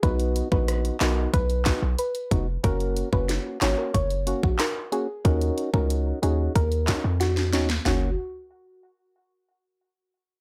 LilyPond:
<<
  \new Staff \with { instrumentName = "Synth pluck" } { \time 4/4 \key fis \major \tempo 4 = 92 b'8 r16 b'16 r8 ais'16 r16 b'8. r16 b'8. r16 | ais'8 r16 b'16 r8 cis''16 ais'16 cis''16 r8 fis'16 ais'16 r16 gis'16 r16 | ais'8 r16 ais'16 r8 gis'16 r16 ais'8. r16 fis'8. r16 | fis'8 r2. r8 | }
  \new Staff \with { instrumentName = "Synth stab" } { \time 4/4 \key fis \major <b dis' fis'>8. <b dis' fis'>8. <b dis' fis'>8 r8 <b dis' fis'>16 r8. <b dis' fis'>16 r16 | <ais cis' fis'>8. <ais cis' fis'>8. <ais cis' fis'>8 r8 <ais cis' fis'>16 r8. <ais cis' fis'>16 r16 | <cis' dis' fis'>8. <cis' dis' fis'>8. <cis' dis' fis'>8 r8 <cis' dis' fis'>16 r8. <cis' dis' fis'>16 r16 | <ais cis' fis'>8 r2. r8 | }
  \new Staff \with { instrumentName = "808-style bass" } { \clef bass \time 4/4 \key fis \major b,,8. ais,,8. b,,8 b,,8. b,,16 r8 eis,,8 | fis,,8. fis,,8 r16 gis,,16 r16 fis,,8. ais,,16 r4 | dis,8 r16 cis,8. dis,8 dis,8. eis,8. dis,8 | fis,,8 r2. r8 | }
  \new DrumStaff \with { instrumentName = "Drums" } \drummode { \time 4/4 <hh bd>16 hh16 hh16 bd16 <hh ss>16 hh16 <hc hh sn>8 <hh bd>16 hh16 <hc hh bd sn>8 hh16 hh16 <hh bd>8 | <hh bd>16 hh16 hh16 bd16 <hh sn>8 <hc hh sn>8 <hh bd>16 hh16 hh16 bd16 <hc hh ss sn>8 hh8 | <hh bd>16 hh16 hh16 bd16 hh8 hh8 <hh bd>16 hh16 <hc hh bd sn>8 <hh sn>16 sn16 <hh sn>16 sn16 | <sn tomfh>4 r4 r4 r4 | }
>>